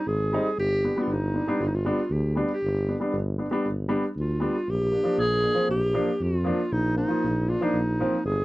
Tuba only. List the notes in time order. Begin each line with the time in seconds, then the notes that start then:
0.06 G#1
0.57 G1
1.07 G1
1.59 G1
2.10 D2
2.62 G1
3.13 G1
3.65 G1
4.16 D2
4.68 A#1
5.18 A#1
5.69 A#1
6.20 F2
6.72 A#1
7.24 A#1
7.73 A#1
8.25 G1